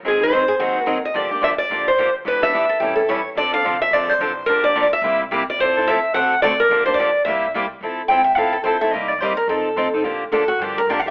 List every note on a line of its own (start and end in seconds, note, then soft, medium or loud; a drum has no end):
0.03 0.48 G#1 medium
0.03 0.20 D#3 medium
0.03 0.20 F#3 medium
0.03 0.20 C4 medium
0.03 0.20 D#4 medium
0.03 0.19 G#4 medium
0.08 0.22 G#4 medium
0.21 0.31 C4 soft
0.21 0.31 D#4 medium
0.21 0.31 G#4 medium
0.21 0.84 C5 medium
0.32 0.42 D#3 medium
0.32 0.42 F#3 medium
0.32 0.42 C4 medium
0.32 0.42 D#4 medium
0.32 0.43 G#4 medium
0.48 0.53 G#4 loud
0.59 1.03 D#2 medium
0.59 0.78 D#3 medium
0.59 0.78 F#3 medium
0.59 0.78 C4 medium
0.59 0.78 D#4 medium
0.59 0.93 F#4 medium
0.59 0.78 G#4 medium
0.84 0.97 D#3 medium
0.84 0.97 F#3 medium
0.84 0.97 C4 medium
0.84 0.97 D#4 medium
0.84 0.97 G#4 medium
0.84 1.05 A#4 medium
1.05 1.15 D#5 medium
1.14 1.59 G1 medium
1.14 1.30 D3 medium
1.14 1.30 F3 medium
1.14 1.30 A#3 medium
1.14 1.30 D4 medium
1.14 1.30 G4 medium
1.14 1.43 D5 medium
1.31 1.41 A#3 soft
1.31 1.42 D4 medium
1.31 1.42 G4 medium
1.41 1.53 D3 medium
1.41 1.52 F3 medium
1.41 1.53 A#3 medium
1.41 1.53 D4 medium
1.41 1.53 G4 medium
1.41 1.49 E5 medium
1.58 1.87 D5 medium
1.70 2.14 D2 medium
1.70 1.89 D3 medium
1.70 1.89 F3 medium
1.70 1.89 A#3 medium
1.70 1.89 D4 medium
1.70 1.90 G4 medium
1.88 2.13 C5 medium
1.98 2.08 D3 medium
1.98 2.08 F3 medium
1.98 2.09 A#3 medium
1.98 2.09 D4 medium
1.98 2.09 G4 medium
2.25 2.70 E1 medium
2.25 2.41 E3 medium
2.25 2.41 B3 medium
2.25 2.41 D4 medium
2.25 2.39 G4 medium
2.25 2.43 B4 medium
2.40 2.53 B3 soft
2.40 2.53 D4 soft
2.40 2.52 G4 medium
2.40 3.22 E5 loud
2.53 2.64 E3 medium
2.53 2.64 B3 medium
2.53 2.64 D4 medium
2.53 2.64 G4 medium
2.69 2.80 A4 medium
2.80 3.25 A1 medium
2.80 3.00 E3 medium
2.80 3.00 G3 medium
2.80 3.00 C#4 medium
2.80 3.00 E4 medium
2.80 2.95 G4 medium
2.80 3.00 A4 medium
2.96 3.08 A4 medium
3.09 3.20 E3 medium
3.09 3.19 G3 medium
3.09 3.20 C#4 loud
3.09 3.20 E4 medium
3.09 3.20 A4 medium
3.09 3.29 C#5 medium
3.35 3.58 D2 medium
3.35 3.52 D3 medium
3.35 3.52 F3 medium
3.35 3.52 C4 medium
3.35 3.53 D4 medium
3.35 3.52 A4 medium
3.35 3.53 D5 medium
3.53 3.64 C4 soft
3.53 3.65 D4 soft
3.53 3.64 A4 medium
3.53 3.81 F5 medium
3.62 3.87 C2 medium
3.62 3.75 D3 medium
3.62 3.75 F3 medium
3.62 3.75 C4 medium
3.62 3.76 D4 medium
3.62 3.76 A4 medium
3.82 3.93 E5 medium
3.91 4.15 A#1 medium
3.91 4.11 D3 medium
3.91 4.12 F3 medium
3.91 4.12 C4 medium
3.91 4.12 D4 medium
3.91 4.12 A4 medium
3.91 4.09 D5 loud
4.09 4.49 C5 medium
4.18 4.43 A1 medium
4.18 4.31 D3 medium
4.18 4.31 F3 medium
4.18 4.31 C4 medium
4.18 4.31 D4 loud
4.18 4.31 A4 medium
4.46 4.91 G1 medium
4.46 4.64 D3 medium
4.46 4.64 F3 medium
4.46 4.64 A#3 medium
4.46 4.63 D4 medium
4.46 4.62 G4 medium
4.46 4.64 A#4 medium
4.63 4.75 A#3 soft
4.63 4.74 D4 medium
4.63 4.75 G4 medium
4.63 4.81 D5 medium
4.75 4.86 D3 medium
4.75 4.86 F3 medium
4.75 4.86 A#3 medium
4.75 4.86 D4 medium
4.75 4.87 G4 loud
4.83 4.91 D5 medium
4.93 5.18 E5 medium
5.02 5.47 C2 loud
5.02 5.22 C3 medium
5.02 5.22 G3 medium
5.02 5.23 A#3 medium
5.02 5.23 E4 medium
5.02 5.23 G4 medium
5.31 5.42 C3 medium
5.31 5.42 G3 medium
5.31 5.42 A#3 loud
5.31 5.42 E4 medium
5.31 5.42 G4 loud
5.50 5.59 D5 medium
5.59 6.03 F2 medium
5.59 5.76 F3 medium
5.59 5.76 C4 medium
5.59 5.76 E4 medium
5.59 5.76 A4 medium
5.59 5.88 C5 medium
5.77 5.87 C4 soft
5.77 5.88 E4 medium
5.77 5.87 A4 medium
5.88 5.98 F3 medium
5.88 5.98 C4 medium
5.88 5.98 E4 medium
5.88 5.98 A4 loud
5.88 6.14 E5 medium
6.14 6.59 D2 loud
6.14 6.33 D3 medium
6.14 6.33 A3 medium
6.14 6.34 C4 medium
6.14 6.33 F#4 medium
6.14 6.34 A4 medium
6.14 6.42 F#5 loud
6.42 6.53 D3 medium
6.42 6.53 A3 loud
6.42 6.53 C4 medium
6.42 6.53 F#4 medium
6.42 6.53 A4 loud
6.42 6.59 D5 medium
6.60 6.85 A#4 medium
6.69 7.14 G1 medium
6.69 6.85 D3 medium
6.69 6.86 F3 medium
6.69 6.86 A#3 medium
6.69 6.86 D4 medium
6.69 6.85 G4 medium
6.86 6.98 A#3 soft
6.86 6.98 D4 medium
6.86 6.97 G4 medium
6.86 6.97 C5 medium
6.94 7.22 D5 medium
6.99 7.09 D3 medium
6.99 7.09 F3 medium
6.99 7.09 A#3 medium
6.99 7.09 D4 loud
6.99 7.09 G4 medium
7.25 7.70 C2 loud
7.25 7.45 C3 medium
7.25 7.45 G3 medium
7.25 7.45 A#3 medium
7.25 7.46 E4 medium
7.25 7.46 G4 medium
7.25 7.51 E5 medium
7.54 7.64 C3 medium
7.54 7.65 G3 medium
7.54 7.65 A#3 loud
7.54 7.65 E4 loud
7.54 7.65 G4 loud
7.81 8.08 F1 medium
7.81 8.01 F3 medium
7.81 8.01 C4 medium
7.81 8.01 E4 medium
7.81 8.01 A4 medium
8.08 8.36 G#1 medium
8.08 8.20 F3 medium
8.08 8.20 C4 medium
8.08 8.20 E4 medium
8.08 8.21 A4 medium
8.08 8.24 G5 medium
8.24 8.35 E5 medium
8.35 8.64 A1 medium
8.35 8.56 F3 medium
8.35 8.56 C4 medium
8.35 8.56 E4 medium
8.35 8.56 A4 medium
8.35 8.52 F5 medium
8.53 8.63 A4 medium
8.64 8.90 A#1 medium
8.64 8.75 F3 medium
8.64 8.75 C4 medium
8.64 8.76 E4 medium
8.64 8.76 A4 medium
8.64 8.80 C5 medium
8.81 8.93 C4 soft
8.81 8.93 E4 medium
8.81 8.93 A4 medium
8.81 8.92 E5 medium
8.91 9.18 C2 medium
8.91 9.12 C3 medium
8.91 9.12 G3 medium
8.91 9.12 A#3 medium
8.91 9.12 D#4 medium
8.91 9.13 G4 medium
8.91 9.08 D#5 medium
9.08 9.20 D5 medium
9.18 9.46 D#2 medium
9.18 9.32 C3 medium
9.18 9.32 G3 medium
9.18 9.32 G4 medium
9.18 9.36 C5 medium
9.23 9.32 A#3 medium
9.23 9.32 D#4 medium
9.37 9.48 A#4 medium
9.47 9.75 F2 medium
9.47 9.68 F3 medium
9.47 9.68 C4 medium
9.47 9.68 D#4 medium
9.47 10.01 A4 medium
9.47 9.68 A4 medium
9.76 9.91 A2 medium
9.76 9.87 F3 medium
9.76 9.87 C4 medium
9.76 9.87 D#4 medium
9.76 9.87 A4 medium
9.93 10.04 C4 soft
9.93 10.04 D#4 soft
9.93 10.04 A4 medium
9.93 muted upright bass stroke soft
10.04 10.31 A#2 medium
10.04 10.23 D3 medium
10.04 10.23 F3 medium
10.04 10.23 A#3 medium
10.04 10.23 D4 medium
10.04 10.23 G4 medium
10.31 10.59 A2 medium
10.31 10.42 D3 medium
10.31 10.43 F3 medium
10.31 10.43 A#3 medium
10.31 10.43 D4 loud
10.31 10.43 G4 medium
10.31 10.48 A4 medium
10.48 10.59 F#4 medium
10.59 10.87 G2 medium
10.59 10.79 D3 medium
10.59 10.79 F3 medium
10.59 10.80 A#3 medium
10.59 10.80 D4 medium
10.59 10.76 G4 medium
10.59 10.80 G4 medium
10.78 10.88 A#4 medium
10.87 11.11 F2 medium
10.87 10.99 D3 medium
10.87 10.99 F3 medium
10.87 10.99 A#3 medium
10.87 10.99 D4 loud
10.87 11.00 G4 medium
10.87 10.99 D5 medium
10.99 11.07 F5 medium
11.06 11.11 A#3 soft
11.06 11.11 D4 medium
11.06 11.11 G4 medium